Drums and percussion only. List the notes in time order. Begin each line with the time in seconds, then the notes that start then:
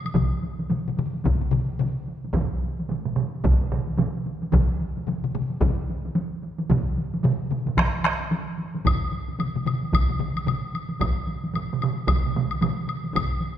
0.05 taiko high, high woodblock
0.15 taiko, taiko low-mid, taiko high
0.43 taiko high
0.60 taiko high
0.70 taiko low-mid, taiko high
0.88 taiko low-mid
0.97 taiko low-mid, taiko high
1.13 taiko high
1.24 taiko, taiko low-mid, taiko high
1.41 taiko low-mid
1.51 taiko low-mid, taiko high
1.69 taiko high
1.79 taiko low-mid, taiko high
2.08 taiko high
2.25 taiko high
2.33 taiko, taiko mid, taiko high
2.63 taiko high
2.79 taiko high
2.89 taiko mid, taiko high
3.05 taiko mid
3.16 taiko mid, taiko high
3.35 taiko high
3.44 taiko, taiko mid, taiko high
3.61 taiko mid
3.72 taiko mid, taiko high
3.87 taiko high
3.97 taiko mid, taiko high
4.26 taiko high
4.42 taiko high
4.52 taiko, taiko low-mid, taiko high
4.80 taiko high
4.97 taiko high
5.07 taiko low-mid, taiko high
5.24 taiko low-mid
5.34 taiko low-mid, taiko high
5.50 taiko high
5.61 taiko, taiko low-mid, taiko high
5.89 taiko high
6.05 taiko high
6.15 taiko high
6.42 taiko high
6.59 taiko high
6.70 taiko, taiko low-mid, taiko mid, taiko high
6.97 taiko high
7.14 taiko high
7.24 taiko low-mid, taiko mid, taiko high
7.51 taiko low-mid, taiko mid
7.66 taiko low-mid, taiko mid, taiko high
7.77 taiko rim, taiko, taiko high
8.04 taiko rim, taiko high
8.06 taiko rim
8.20 taiko high
8.31 taiko high
8.59 taiko high
8.75 taiko high
8.85 taiko, taiko low-mid, taiko high, high woodblock
9.12 taiko high
9.28 taiko high
9.39 taiko low-mid, taiko high, high woodblock
9.56 taiko low-mid
9.65 taiko low-mid, taiko high, high woodblock
9.82 taiko high
9.93 taiko, taiko low-mid, taiko high, high woodblock
10.09 taiko low-mid
10.20 taiko low-mid, taiko high
10.35 taiko high, high woodblock
10.46 taiko low-mid, taiko high, high woodblock
10.74 taiko high, high woodblock
10.89 taiko high
11.00 taiko, taiko mid, taiko high, high woodblock
11.27 taiko high
11.44 taiko high
11.54 taiko mid, taiko high, high woodblock
11.73 taiko mid
11.82 taiko mid, taiko high, high woodblock
11.98 taiko high
12.08 taiko, taiko mid, taiko high, high woodblock
12.26 taiko mid
12.35 taiko mid, taiko high
12.51 taiko high, high woodblock
12.61 taiko mid, taiko high, high woodblock
12.87 taiko high, high woodblock
13.04 taiko high
13.13 taiko, taiko low-mid, taiko high, high woodblock
13.41 taiko high